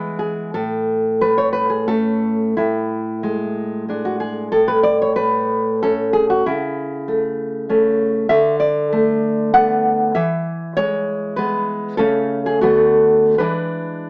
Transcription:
0.00 0.53 E3 soft
0.00 0.51 G#3 soft
0.00 0.52 B3 soft
0.00 0.15 B4 soft
0.19 0.53 G#4 soft
0.54 2.54 A2 soft
0.54 1.18 A4 medium
1.21 1.87 A3 soft
1.21 1.37 B4 medium
1.38 1.52 C#5 medium
1.53 1.71 B4 medium
1.70 1.88 G#4 medium
1.88 2.54 A3 soft
1.88 2.54 C#4 soft
1.88 2.54 A4 medium
2.57 4.51 A2 soft
2.57 4.01 E4 medium
3.23 3.87 G#3 soft
3.89 4.50 G#3 soft
3.89 4.51 D4 soft
4.05 4.20 F#4 medium
4.20 4.51 G#4 medium
4.52 6.42 A2 soft
4.52 4.69 A4 medium
4.68 4.83 B4 medium
4.83 5.01 D5 medium
5.02 5.16 C#5 medium
5.16 5.82 A3 soft
5.16 5.80 B4 medium
5.83 6.42 A3 soft
5.83 6.43 C#4 soft
5.83 6.13 A4 medium
6.13 6.29 G#4 medium
6.30 6.46 F#4 medium
6.46 8.28 C#3 soft
6.46 7.97 E4 medium
7.08 7.68 A3 soft
7.69 8.28 A3 soft
7.69 8.28 C#4 soft
8.29 10.11 D3 medium
8.29 8.59 E5 medium
8.60 9.50 D5 medium
8.93 9.53 A3 soft
9.54 10.12 A3 soft
9.54 10.12 B3 soft
9.54 10.13 F#5 medium
10.15 11.96 E3 medium
10.15 10.74 E5 medium
10.77 11.37 G#3 soft
10.77 11.35 C#5 medium
11.36 11.96 G#3 soft
11.36 11.96 B3 soft
11.36 11.97 B4 medium
11.97 12.61 C#3 medium
11.97 12.60 A3 soft
11.97 12.00 C#4 soft
11.97 12.59 C#4 soft
11.97 12.44 A4 medium
12.46 12.63 G#4 medium
12.61 13.36 D3 medium
12.61 13.35 A3 soft
12.61 13.35 B3 soft
12.61 13.35 F#4 medium
13.38 14.10 E3 medium
13.38 14.10 G#3 soft
13.38 14.10 D4 soft
13.38 14.10 B4 medium

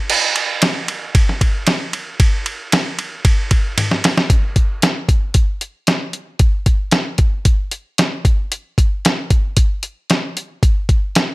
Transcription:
0.10 crash loud
0.36 ride medium
0.62 snare loud
0.62 ride loud
0.88 ride medium
1.15 kick loud
1.15 ride medium
1.29 snare soft
1.41 kick medium
1.41 ride medium
1.67 snare loud
1.67 ride medium
1.93 ride medium
2.20 kick loud
2.20 ride loud
2.46 ride medium
2.72 snare loud
2.72 ride loud
2.99 ride medium
3.25 kick loud
3.25 ride loud
3.51 kick medium
3.51 ride medium
3.78 high tom medium
3.78 ride loud
3.91 snare medium
4.04 snare medium
4.04 ride medium
4.17 snare medium
4.30 kick loud
4.30 closed hi-hat medium
4.56 kick medium
4.56 closed hi-hat medium
4.82 snare loud
4.82 closed hi-hat medium
5.09 kick medium
5.09 closed hi-hat medium
5.34 kick medium
5.34 closed hi-hat medium
5.61 closed hi-hat medium
5.87 snare loud
5.87 closed hi-hat medium
6.13 closed hi-hat medium
6.39 kick loud
6.39 closed hi-hat medium
6.66 kick medium
6.66 closed hi-hat medium
6.91 snare loud
6.91 closed hi-hat medium
7.18 kick medium
7.18 closed hi-hat medium
7.45 kick medium
7.45 closed hi-hat medium
7.71 closed hi-hat medium
7.98 snare loud
7.98 closed hi-hat medium
8.25 kick loud
8.25 closed hi-hat medium
8.52 closed hi-hat medium
8.78 kick medium
8.78 closed hi-hat medium
9.05 snare loud
9.05 closed hi-hat medium
9.30 kick medium
9.30 closed hi-hat medium
9.57 kick medium
9.57 closed hi-hat medium
9.83 closed hi-hat medium
10.10 snare loud
10.10 closed hi-hat medium
10.37 closed hi-hat medium
10.63 kick loud
10.63 closed hi-hat medium
10.89 kick medium
10.89 closed hi-hat medium
11.15 snare loud
11.15 closed hi-hat medium

